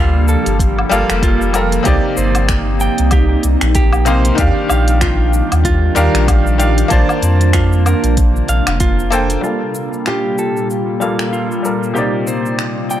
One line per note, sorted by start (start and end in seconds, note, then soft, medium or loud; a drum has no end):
0.00 0.36 D2 medium
0.00 1.83 F3 medium
0.00 0.86 G3 medium
0.00 0.89 A#3 loud
0.00 4.34 A#3 medium
0.00 0.25 F4 medium
0.00 0.87 F4 medium
0.00 1.83 G4 medium
0.00 0.88 A4 medium
0.28 0.57 A4 medium
0.28 shaker medium
0.46 0.84 G1 medium
0.46 closed hi-hat soft
0.46 shaker soft
0.59 kick loud
0.59 closed hi-hat medium
0.59 shaker soft
0.79 low woodblock medium
0.89 1.03 G1 medium
0.89 1.50 G3 loud
0.89 1.51 A#3 loud
0.89 1.51 F4 medium
0.89 1.51 A4 medium
0.89 1.20 F5 medium
0.89 closed hi-hat soft
0.89 shaker medium
1.10 1.79 F1 medium
1.10 finger snap medium
1.10 closed hi-hat soft
1.10 shaker soft
1.23 1.53 F4 loud
1.23 kick loud
1.23 closed hi-hat medium
1.23 shaker soft
1.42 shaker soft
1.53 1.82 G3 medium
1.53 1.82 F4 medium
1.53 1.83 A4 medium
1.53 1.83 A#4 medium
1.53 closed hi-hat soft
1.53 low woodblock medium
1.53 shaker medium
1.72 closed hi-hat soft
1.72 shaker soft
1.83 1.98 C2 loud
1.83 4.02 C3 medium
1.83 4.03 A#3 medium
1.83 4.36 C4 medium
1.83 4.03 D#4 medium
1.83 4.36 D#4 medium
1.83 2.15 G4 loud
1.83 kick loud
1.83 closed hi-hat medium
1.83 shaker soft
1.87 4.04 D5 loud
2.17 2.89 G1 medium
2.17 2.46 C5 medium
2.17 shaker medium
2.35 closed hi-hat soft
2.35 low woodblock medium
2.35 shaker soft
2.49 finger snap medium
2.49 kick medium
2.49 closed hi-hat medium
2.49 shaker soft
2.80 3.10 G5 medium
2.80 shaker medium
2.98 3.37 C2 medium
2.98 closed hi-hat soft
2.98 shaker soft
3.11 3.42 G4 loud
3.11 kick loud
3.11 closed hi-hat medium
3.11 low woodblock medium
3.11 shaker soft
3.43 3.56 C2 medium
3.43 closed hi-hat soft
3.43 shaker medium
3.61 4.31 A#1 medium
3.61 finger snap medium
3.61 closed hi-hat soft
3.61 shaker soft
3.75 4.04 G4 loud
3.75 kick loud
3.75 closed hi-hat medium
3.75 shaker soft
3.93 low woodblock medium
3.93 shaker soft
4.05 4.34 C3 medium
4.05 4.35 A#3 medium
4.05 4.35 D#4 medium
4.05 4.36 C5 medium
4.05 4.35 F5 loud
4.05 closed hi-hat soft
4.05 shaker medium
4.25 closed hi-hat medium
4.25 shaker soft
4.35 4.51 D#2 loud
4.35 5.91 D#3 medium
4.35 6.88 D#3 medium
4.35 6.88 G3 medium
4.35 5.92 D4 medium
4.35 9.39 D4 medium
4.35 6.88 F4 medium
4.35 5.93 G4 medium
4.35 kick loud
4.35 closed hi-hat medium
4.35 shaker soft
4.40 5.94 F5 loud
4.70 5.42 A#1 medium
4.70 4.99 F5 medium
4.70 low woodblock medium
4.70 shaker medium
4.88 closed hi-hat soft
4.88 shaker soft
5.01 5.32 F4 loud
5.01 finger snap medium
5.01 kick loud
5.01 closed hi-hat medium
5.01 shaker soft
5.33 shaker medium
5.52 5.90 D#2 medium
5.52 closed hi-hat soft
5.52 low woodblock medium
5.52 shaker soft
5.65 5.94 F4 loud
5.65 kick medium
5.65 closed hi-hat medium
5.65 shaker soft
5.95 6.09 D#2 medium
5.95 6.55 D#3 loud
5.95 6.56 D4 medium
5.95 6.56 G4 medium
5.95 6.25 A#4 medium
5.95 6.57 F5 loud
5.95 closed hi-hat soft
5.95 shaker medium
6.14 6.84 A#1 medium
6.14 finger snap medium
6.14 closed hi-hat soft
6.14 shaker soft
6.28 kick loud
6.28 closed hi-hat medium
6.28 low woodblock medium
6.28 shaker soft
6.47 shaker soft
6.58 6.87 D#3 medium
6.58 6.87 D4 medium
6.58 6.88 G4 medium
6.58 6.88 F5 medium
6.58 closed hi-hat soft
6.58 shaker medium
6.78 closed hi-hat medium
6.78 shaker soft
6.88 7.03 A#1 medium
6.88 9.41 C3 medium
6.88 9.07 A#3 loud
6.88 9.41 A#3 medium
6.88 7.21 F4 medium
6.88 9.09 C5 medium
6.88 9.08 A5 medium
6.88 kick loud
6.88 closed hi-hat medium
6.88 shaker soft
6.93 9.10 D5 loud
7.09 low woodblock medium
7.09 shaker soft
7.22 7.94 F2 medium
7.22 closed hi-hat soft
7.22 shaker medium
7.41 closed hi-hat soft
7.41 shaker soft
7.53 7.83 F4 loud
7.53 finger snap medium
7.53 kick medium
7.53 closed hi-hat medium
7.53 shaker soft
7.73 shaker soft
7.86 8.15 A#4 medium
7.86 closed hi-hat soft
7.86 low woodblock medium
7.86 shaker medium
8.04 8.42 A#1 medium
8.04 closed hi-hat soft
8.04 shaker soft
8.17 kick medium
8.17 closed hi-hat medium
8.17 shaker soft
8.36 shaker soft
8.48 8.61 A#1 medium
8.48 8.78 F5 medium
8.48 closed hi-hat soft
8.48 shaker medium
8.67 9.36 F1 medium
8.67 finger snap medium
8.67 closed hi-hat soft
8.67 low woodblock medium
8.67 shaker soft
8.80 9.11 F4 loud
8.80 kick loud
8.80 closed hi-hat medium
8.80 shaker soft
8.99 shaker soft
9.10 9.40 A#3 medium
9.10 9.40 A4 medium
9.10 9.40 C5 medium
9.10 9.41 G5 loud
9.10 closed hi-hat soft
9.10 shaker medium
9.30 closed hi-hat medium
9.30 shaker soft
9.41 11.94 A#2 medium
9.41 10.97 G3 medium
9.41 11.94 G3 medium
9.41 13.00 A#3 medium
9.41 10.98 F4 medium
9.41 9.74 F4 medium
9.41 11.94 F4 medium
9.41 10.99 A4 medium
9.41 shaker soft
9.46 10.99 A#3 medium
9.75 shaker medium
9.93 shaker soft
10.06 10.36 F4 medium
10.06 11.61 G4 medium
10.06 finger snap medium
10.06 shaker soft
10.38 10.67 A4 medium
10.38 shaker medium
10.57 shaker soft
10.70 shaker soft
11.00 11.61 G3 medium
11.00 11.62 A#3 medium
11.00 11.61 F4 medium
11.00 11.61 A4 medium
11.00 11.30 F5 medium
11.00 shaker medium
11.19 finger snap medium
11.19 shaker soft
11.33 11.63 F4 medium
11.33 shaker soft
11.51 shaker soft
11.63 11.92 G3 medium
11.63 11.92 F4 medium
11.63 11.93 A4 medium
11.63 11.93 A#4 medium
11.63 shaker medium
11.83 shaker soft
11.94 13.00 C3 medium
11.94 13.00 A#3 medium
11.94 13.00 D#4 medium
11.94 12.24 G4 medium
11.94 13.00 D5 medium
11.94 shaker soft
11.98 13.00 D5 medium
12.27 12.56 C5 medium
12.27 shaker medium
12.46 shaker soft
12.59 finger snap medium
12.59 shaker soft
12.90 13.00 G5 medium
12.90 shaker medium